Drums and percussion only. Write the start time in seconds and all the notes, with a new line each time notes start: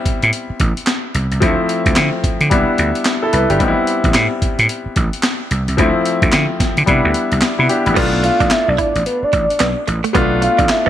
0.06 kick, closed hi-hat
0.22 closed hi-hat
0.33 closed hi-hat
0.60 kick, closed hi-hat
0.77 closed hi-hat
0.86 snare, clap, closed hi-hat
1.15 closed hi-hat
1.32 closed hi-hat
1.42 kick, closed hi-hat
1.69 closed hi-hat
1.86 kick, closed hi-hat
1.96 snare, clap, closed hi-hat
2.24 kick, closed hi-hat
2.41 closed hi-hat
2.51 kick, closed hi-hat
2.78 closed hi-hat
2.95 closed hi-hat
3.05 snare, clap, closed hi-hat
3.33 closed hi-hat
3.50 closed hi-hat
3.60 kick, closed hi-hat
3.87 closed hi-hat
4.04 kick, closed hi-hat
4.14 snare, clap, closed hi-hat
4.42 kick, closed hi-hat
4.59 closed hi-hat
4.69 closed hi-hat
4.96 kick, closed hi-hat
5.13 closed hi-hat
5.23 snare, clap, closed hi-hat
5.51 closed hi-hat
5.68 closed hi-hat
5.78 kick, closed hi-hat
6.05 closed hi-hat
6.22 kick, closed hi-hat
6.32 snare, clap, closed hi-hat
6.60 kick, snare, closed hi-hat
6.77 closed hi-hat
6.87 kick, closed hi-hat
7.14 closed hi-hat
7.32 closed hi-hat
7.41 snare, clap, closed hi-hat
7.69 closed hi-hat
7.86 closed hi-hat
7.97 kick, closed hi-hat, crash
8.24 closed hi-hat
8.40 kick, closed hi-hat
8.50 snare, clap, closed hi-hat
8.78 kick, closed hi-hat
8.96 closed hi-hat
9.06 closed hi-hat
9.33 kick, closed hi-hat
9.50 closed hi-hat
9.60 snare, clap, closed hi-hat
9.88 closed hi-hat
10.04 closed hi-hat
10.15 kick, closed hi-hat
10.42 closed hi-hat
10.59 kick, closed hi-hat
10.69 snare, clap, closed hi-hat